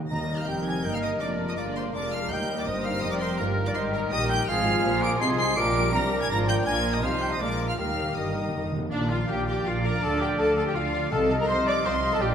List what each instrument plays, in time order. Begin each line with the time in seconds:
0.10 double bass section D#2, cello section D#2, timpani D#3, viola section G3 D#4, french horn section G3 D#4, bassoon D#4, violin section G4 D#5 A#6, trumpet A#4, oboe A#5, flute A#5
0.38 oboe F5, flute F5, violin section F6
0.47 double bass section F1, cello section F2, viola section C4 D#4, bassoon G4, violin section A#4 G6, oboe G5, flute G5
0.65 oboe G#5, flute G#5, violin section G#6
0.84 double bass section G1, cello section G2, viola section A#3, violin section D#4 G6, bassoon D#4, oboe G5, flute G5
0.93 oboe F5, flute F5, violin section F6
1.03 oboe D#5, flute D#5, violin section D#6
1.20 double bass section F1, cello section F2, french horn section G#3 F4, viola section A#3 F4, bassoon D4, violin section D4 D5 D6, flute D5, oboe D5
1.49 oboe D#5, flute D#5, violin section D#6
1.57 double bass section G1, cello section G2, viola section A#3 D4, bassoon F4, violin section F4 D5 D6, oboe D5, flute D5
1.75 oboe C5, flute C5, violin section C6
1.94 double bass section F1, cello section F2, viola section G#3 D4, bassoon D4, violin section F4 A#4 D6, oboe D5, flute D5
2.12 flute F5, oboe F5, violin section F6
2.30 cello section D#2, double bass section D#2, french horn section G3 D#4, viola section G3 D#4, bassoon D#4, violin section G4 A#4 G6, trumpet A#4, flute G5, oboe G5
2.59 oboe D5, flute D5, violin section D6
2.66 double bass section G1, cello section G2, viola section A#3, bassoon C4, violin section C5 D#6, flute D#5, oboe D#5
2.84 flute F5, oboe F5, violin section F6
3.01 double bass section F1, cello section F2, viola section C4, violin section G4 A#4 D#6, flute D#5, oboe D#5
3.10 flute D5, oboe D5, violin section D6
3.19 oboe C5, flute C5, violin section C6
3.37 double bass section G1, cello section G2, viola section A#3 F4, bassoon A#3, violin section G4 A#4 A#5, oboe A#4, flute A#4
3.66 flute D5, oboe D5, violin section D6
3.74 double bass section G#1, cello section G#2, viola section D#3 D#4, bassoon D#4, violin section G4 C6, flute C5, oboe C5
3.92 flute A#4, oboe A#4, violin section A#5
4.11 double bass section A#1, cello section A#2, viola section D#4, bassoon G4, violin section G4 D#6, flute D#5, oboe D#5
4.27 flute G5, oboe G5, violin section G6
4.47 double bass section G#1, cello section G#2, french horn section F3 F4, viola section F3 C4, bassoon F4, violin section F4 C5 F6, trumpet G#4, flute F5, oboe F5
4.66 viola section G#3
4.84 double bass section A#1, cello section A#2, viola section G3, bassoon C4, violin section F4 A#4
5.02 viola section F3, flute D6, oboe D6, violin section D7
5.19 double bass section C2, cello section C3, french horn section F3 F4, bassoon D#4, trumpet G#4, violin section G#4 C7, flute C6, oboe C6
5.38 oboe C6, flute C6, violin section C7
5.56 double bass section A#1, cello section A#2, french horn section F3 F4, viola section F3 D4, bassoon D4, violin section G4 A#4 D7, trumpet A#4, oboe D6, flute D6
5.77 viola section G3
5.93 double bass section C2, cello section C3, french horn section F3 F4, viola section D4, violin section A#4 A#6, trumpet A#4, oboe A#5, flute A#5
6.20 oboe G#5, flute G#5, violin section G#6
6.30 double bass section G#1, cello section G#2, french horn section F3 F4, viola section F3 F4, bassoon D4, violin section F4 A#6, trumpet A#4, oboe A#5, flute A#5
6.47 flute G5, oboe G5, violin section G6
6.65 double bass section A#1, cello section A#2, french horn section F3 D4, viola section F3 D4, violin section F4 D5 G#6, trumpet A#4, flute G#5, oboe G#5
6.93 oboe D#5, flute D#5, violin section D#6
7.02 double bass section C2, cello section C3, viola section F3, french horn section G3 D#4, bassoon D#4, violin section D#4 G4 F6, trumpet C5, oboe F5, flute F5
7.21 flute G5, oboe G5, violin section G6
7.31 flute D#5, oboe D#5, violin section D#6
7.39 double bass section A#1, cello section A#2, french horn section G#3 F4, violin section F4 A#4 D6, bassoon F4, trumpet A#4, oboe D5, flute D5
7.67 oboe F5, flute F5, violin section F6
7.77 cello section D#2, double bass section D#2, viola section D#3 D#4, timpani D#3, french horn section G3 D#4, violin section G4 A#4 F6, bassoon G4, trumpet A#4, flute F5, oboe F5
7.86 timpani D#3
7.94 timpani D#3
8.03 timpani D#3
8.10 timpani D#3
8.16 double bass section G1, cello section G2, timpani D#3, french horn section G3 D#4, trumpet A#4, flute D#5, oboe D#5, violin section D#6
8.26 timpani D#3
8.33 timpani D#3
8.41 timpani D#3
8.48 timpani D#3
8.54 double bass section F1, cello section F2, timpani D#3
8.64 timpani D#3
8.72 timpani D#3
8.79 timpani D#3
8.90 double bass section A#1, cello section A#2, french horn section F3 D4, bassoon A#3, oboe D4, viola section D4, violin section D5 F5, flute D5, trumpet D5, clarinet F5
9.09 oboe F4, viola section F4, violin section F5, flute F5
9.28 double bass section A#1, cello section A#2, oboe G4, viola section G4, violin section F5 G5, flute G5
9.47 oboe G4, viola section G4, violin section F5 G5, flute G5
9.65 double bass section A#1, cello section A#2, oboe F4, viola section F4, violin section F5, flute F5
9.84 oboe A#4, viola section A#4, violin section F5 A#5, flute A#5
10.00 double bass section D2, cello section D3, bassoon D4, oboe A4, viola section A4, violin section F5 A5, flute A5
10.19 oboe G4, viola section G4, violin section F5 G5, flute G5
10.38 double bass section D2, cello section D3, viola section A4, oboe A4, violin section F5 A5, flute A5
10.56 oboe A4, viola section A4, violin section F5 A5, flute A5
10.66 viola section G4, oboe G4, flute G5, violin section G5
10.74 double bass section D2, cello section D3, oboe F4, viola section F4, violin section F5, flute F5
10.94 violin section F5
11.11 double bass section C2, cello section C3, timpani C3, french horn section F3 C4, bassoon D#4, oboe A4, viola section A4, trumpet D#5, violin section F5 A5, clarinet F5, flute A5
11.30 violin section F5
11.38 oboe A#4, viola section A#4, flute A#5, violin section A#5
11.48 double bass section C2, cello section C3, oboe C5, viola section C5, violin section F5 C6, flute C6
11.66 oboe D5, viola section D5, violin section F5 D6, flute D6
11.85 double bass section C2, cello section C3, oboe C5, viola section C5, violin section F5 C6, flute C6
12.03 violin section F5
12.12 oboe A4, viola section A4, flute A5, violin section A5
12.20 double bass section A#1, cello section A#2, french horn section D4, bassoon D4, oboe G4, viola section G4, violin section D5 G5, trumpet D5, flute G5